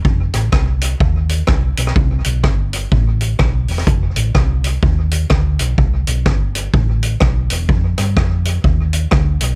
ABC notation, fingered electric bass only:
X:1
M:4/4
L:1/8
Q:"Swing" 1/4=126
K:Flyd
V:1 name="Fingered electric bass" clef=bass
F,,, A,,, C,,2 ^D,,2 C,, B,,, | C,, B,,, G,,,2 A,,,2 B,,, E,,, | F,,, A,,, C,,2 ^D,,2 =D,, B,,, | C,, B,,, G,,,2 A,,,2 B,,, E,,, |
F,, G,, F,,2 ^D,,2 =D,, B,,, |]